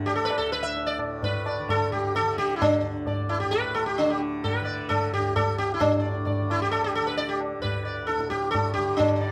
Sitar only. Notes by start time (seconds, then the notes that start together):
0.06 G4
0.15 A4
0.25 B4
0.38 A4
0.52 B4
0.63 E5
0.86 D5
1.24 B4
1.46 D5
1.70 A4
1.92 G4
2.16 A4
2.38 G4
2.56 E4
2.62 D4
3.07 D5
3.29 E4
3.40 G4
3.51 B4
3.75 A4
3.86 G4
3.98 D4
4.10 G4
4.44 B4
4.65 D5
4.89 A4
5.14 G4
5.36 A4
5.58 G4
5.74 E4
5.80 D4
6.01 D5
6.25 D5
6.51 E4
6.62 G4
6.71 A4
6.84 G4
6.95 A4
7.07 B4
7.17 D5
7.29 G4
7.62 B4
7.85 D5
8.07 A4
8.30 G4
8.51 A4
8.74 G4
8.97 D4
9.21 D5